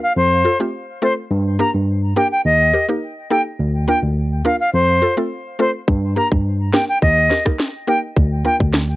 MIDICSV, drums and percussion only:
0, 0, Header, 1, 2, 480
1, 0, Start_track
1, 0, Key_signature, -2, "minor"
1, 0, Tempo, 571429
1, 1099, Time_signature, 4, 2, 24, 8
1, 7528, End_track
2, 0, Start_track
2, 0, Title_t, "Drums"
2, 4938, Note_on_c, 9, 36, 111
2, 5022, Note_off_c, 9, 36, 0
2, 5306, Note_on_c, 9, 36, 86
2, 5390, Note_off_c, 9, 36, 0
2, 5660, Note_on_c, 9, 38, 116
2, 5744, Note_off_c, 9, 38, 0
2, 5900, Note_on_c, 9, 36, 90
2, 5984, Note_off_c, 9, 36, 0
2, 6138, Note_on_c, 9, 38, 70
2, 6222, Note_off_c, 9, 38, 0
2, 6265, Note_on_c, 9, 37, 101
2, 6266, Note_on_c, 9, 36, 88
2, 6349, Note_off_c, 9, 37, 0
2, 6350, Note_off_c, 9, 36, 0
2, 6381, Note_on_c, 9, 38, 103
2, 6465, Note_off_c, 9, 38, 0
2, 6859, Note_on_c, 9, 36, 117
2, 6943, Note_off_c, 9, 36, 0
2, 7226, Note_on_c, 9, 36, 89
2, 7310, Note_off_c, 9, 36, 0
2, 7339, Note_on_c, 9, 38, 112
2, 7423, Note_off_c, 9, 38, 0
2, 7528, End_track
0, 0, End_of_file